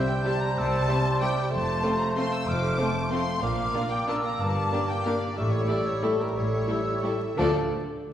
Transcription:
Already playing: harp C3 C4 C5, bassoon G3, cor anglais C5, flute G6
0.07 violin section G5, harp G5
0.23 french horn section G3 C4, viola section G3 C4, violin section E4 C5 A5, harp C5
0.40 harp G4, violin section A#5
0.57 double bass section C2, harp C3, cello section C3, violin section A5, flute E6
0.72 harp C4
0.87 french horn section G3 C4, viola section G3 C4, violin section E4 C5, harp C5, flute C6
1.06 harp G5
1.21 french horn section G3 C4, viola section G3 C4, violin section E4 C5 G5, harp C5, flute D6
1.37 harp G4
1.52 double bass section F1, cello section F2, harp F3, bassoon A3, cor anglais C5, violin section A5, flute C6
1.68 harp F4
1.83 french horn section A3 C4, viola section A3 C4, violin section F4 C5, harp C5
2.00 violin section A#5
2.16 french horn section A3 C4, viola section A3 C4, violin section F4 C5 C6, harp F5, flute A5
2.33 harp C5, violin section E6
2.47 double bass section F1, cello section F2, harp F3, violin section D6, flute F6
2.63 harp F4
2.78 french horn section A3 C4, viola section A3 C4, violin section F4 C5, flute A5
2.96 harp C6
3.10 french horn section A3 C4, viola section A3 C4, violin section F4 C5 C6, harp F5, flute C6
3.27 harp C5
3.41 double bass section A#1, cello section A#2, harp A#2, bassoon A#3, cor anglais D5, violin section F5, flute D6
3.58 harp A#3
3.74 viola section A#3 D4, french horn section A#3 D4, violin section F4 A#4, harp D5
3.90 harp F5, violin section G5
4.08 viola section A#3 D4, french horn section A#3 D4, violin section F4 A#4 A5, harp A#4, flute E6
4.24 harp D5, violin section A#5
4.39 double bass section G1, cello section G2, harp G2, violin section A5, flute D6
4.56 harp A#3
4.72 french horn section A#3 D4, viola section A#3 D4, violin section G4 A#4, harp D5
4.88 violin section G5, harp G5
5.04 viola section A#3 D4, french horn section A#3 D4, violin section G4 A#4 F5, harp A#4
5.21 violin section D5, harp D5
5.37 double bass section A1, cello section A2, harp A2, bassoon G3, violin section E5, cor anglais E5, flute C#6
5.52 harp A3, violin section C#5
5.68 viola section G3 A3, french horn section G3 E4, violin section E4 A4 D5, harp A4, flute E6
5.86 violin section C#5, harp G5
6.02 viola section G3 A3, french horn section G3 E4, violin section E4 A4, flute C#6
6.19 harp G4, violin section A#4
6.34 double bass section A1, harp A2, cello section A2, violin section C#5, flute C#6
6.51 harp A3
6.68 viola section G3 A3, french horn section G3 E4, violin section E4 A4, harp A4, flute E6
6.86 harp G5
7.03 viola section G3 A3, french horn section G3 E4, violin section E4 A4 E5, harp A4, flute C#6
7.21 harp G4
7.34 double bass section D2, harp D3 A3 D4, viola section F3 A3, bassoon F3, french horn section A3 F4, violin section D4 A4, cor anglais D5, flute A5
7.38 cello section D3, harp F4 A4 F5, violin section D5

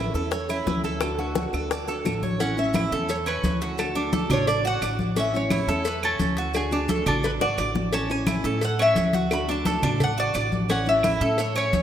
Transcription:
Already playing: nylon-string guitar E3 A3 C#4 E4, cuban tres E4 E5
0.14 upright bass E2, nylon-string guitar A3 C#4 E4, cuban tres A4, high bongo, high conga, maracas
0.31 cuban tres C#5, muted nylon-string guitar stroke, high bongo, high conga, maracas
0.49 nylon-string guitar A3 C#4 E4, cuban tres E4, high bongo, high conga, claves, maracas
0.66 upright bass D2, nylon-string guitar E3 A3 C#4 E4, cuban tres B4, high bongo, low bongo, high conga, maracas
0.84 cuban tres A4, high conga, maracas
1.01 nylon-string guitar D3 A3 D4 F#4, high bongo, high conga, claves, maracas
1.18 nylon-string guitar A3 D4 F#4, cuban tres F#4, high bongo, high conga
1.35 nylon-string guitar D3 A3 D4 F#4, high bongo, high conga, maracas
1.53 upright bass D2, nylon-string guitar A3 D4 F#4, cuban tres A4, high bongo, claves, maracas
1.71 cuban tres D5, muted nylon-string guitar stroke, high bongo, high conga, maracas
1.88 nylon-string guitar A3 D4 F#4, cuban tres A4, high bongo, high conga, maracas
2.05 upright bass A1, nylon-string guitar D3 A3 D4 F#4, high bongo, low bongo, high conga, claves, maracas
2.23 cuban tres C#5, high conga, maracas
2.40 nylon-string guitar E3 A3 C#4 E4, cuban tres C#4 F#5, cowbell, high conga, maracas
2.57 nylon-string guitar A3 C#4 E4, cuban tres E5, high conga, maracas
2.73 cuban tres E4, cowbell, high conga, claves, maracas
2.91 upright bass E2, nylon-string guitar A3 C#4 E4, cuban tres A4, cowbell, high conga, maracas
3.09 cuban tres C#5, muted nylon-string guitar stroke, cowbell, high conga, maracas
3.26 cuban tres C#4 B4, high conga, claves, maracas
3.43 upright bass D2, nylon-string guitar E3 A3 C#4 E4, cowbell, high conga, maracas
3.61 cuban tres F#4, cowbell, maracas
3.78 nylon-string guitar D3 A3 D4 F#4, cuban tres A4, cowbell, high conga, claves, maracas
3.95 nylon-string guitar A3 D4 F#4, cuban tres D4, high conga, maracas
4.13 cuban tres A4, cowbell, high conga, maracas
4.29 upright bass A1, nylon-string guitar A3 D4 F#4, cuban tres D4 C#5, cowbell, high conga, low conga, claves, maracas
4.46 cuban tres D5, muted nylon-string guitar stroke, cowbell, high conga, maracas
4.64 cuban tres F#4 F#5, high conga, maracas
4.81 upright bass A1, nylon-string guitar D3 A3 D4 F#4, cuban tres D5, cowbell, high conga, claves, maracas
4.99 high conga, maracas
5.16 nylon-string guitar E3 A3 C#4 E4, cuban tres C#4, cowbell, high conga, maracas
5.20 cuban tres E5
5.34 nylon-string guitar A3 C#4 E4, cuban tres C#5, high conga, maracas
5.50 cuban tres E4, cowbell, high conga, claves, maracas
5.67 upright bass E2, nylon-string guitar A3 C#4 E4, cuban tres A4, cowbell, maracas
5.85 cuban tres B4, muted nylon-string guitar stroke, cowbell, high conga, maracas
6.03 cuban tres C#4 A4, high conga, claves, maracas
6.19 upright bass D2, nylon-string guitar E3 A3 C#4 E4, cowbell, high conga, maracas
6.37 cuban tres F#4, cowbell, maracas
6.54 nylon-string guitar D3 A3 D4 F#4, cuban tres G#4, cowbell, high conga, claves, maracas
6.71 nylon-string guitar A3 D4 F#4, cuban tres D4, high conga, maracas
6.88 cuban tres A4, cowbell, high conga, maracas
7.06 upright bass A1, nylon-string guitar A3 D4 F#4, cuban tres D4 A4, cowbell, high conga, low conga, claves, maracas
7.23 cuban tres B4, muted nylon-string guitar stroke, cowbell, high conga, maracas
7.40 upright bass G#1, cuban tres F#4 D5, high bongo, high conga, maracas
7.58 upright bass A1, nylon-string guitar D3 A3 D4 F#4, cuban tres D5, cowbell, high conga, claves, maracas
7.75 low bongo, high conga, maracas
7.92 nylon-string guitar E3 A3 C#4 E4, cuban tres C#4 A5, cowbell, high conga, maracas
8.10 nylon-string guitar A3 C#4 E4, cuban tres G#5, high conga, maracas
8.27 cuban tres E4, cowbell, high conga, claves, maracas
8.44 upright bass A2, nylon-string guitar A3 C#4 E4, cuban tres A4, cowbell, high conga, maracas
8.61 cuban tres F#5, muted nylon-string guitar stroke, cowbell, high conga, maracas
8.79 cuban tres C#4 E5, high conga, claves, maracas
8.96 upright bass D2, nylon-string guitar E3 A3 C#4 E4, cowbell, high conga, maracas
9.13 cuban tres F#4, cowbell, high conga, maracas
9.31 nylon-string guitar D3 A3 D4 F#4, cuban tres B5, cowbell, claves, maracas
9.48 nylon-string guitar A3 D4 F#4, cuban tres D4 A5, high conga, maracas
9.65 cuban tres A4, cowbell, high conga, maracas
9.82 upright bass A1, nylon-string guitar A3 D4 F#4, cuban tres D4, cowbell, high conga, low conga, claves, maracas
10.00 cuban tres F#5, muted nylon-string guitar stroke, cowbell, high conga, low conga, maracas
10.17 cuban tres F#4 D5, high conga, maracas
10.34 upright bass A1, nylon-string guitar D3 A3 D4 F#4, cuban tres D5, cowbell, high conga, claves, maracas
10.52 high conga, maracas
10.69 nylon-string guitar E3 A3 C#4 E4, cuban tres C#4 F#5, cowbell, high conga, maracas
10.86 nylon-string guitar A3 C#4 E4, cuban tres E5, high conga, maracas
11.03 cuban tres E4, cowbell, high conga, claves, maracas
11.21 upright bass A2, nylon-string guitar A3 C#4 E4, cuban tres A4, cowbell, high conga, maracas
11.38 cuban tres C#5, muted nylon-string guitar stroke, cowbell, high conga, maracas
11.56 cuban tres C#4 C#5, high conga, claves, maracas
11.72 upright bass D2, nylon-string guitar E3 A3 C#4 E4, cowbell, high conga, maracas

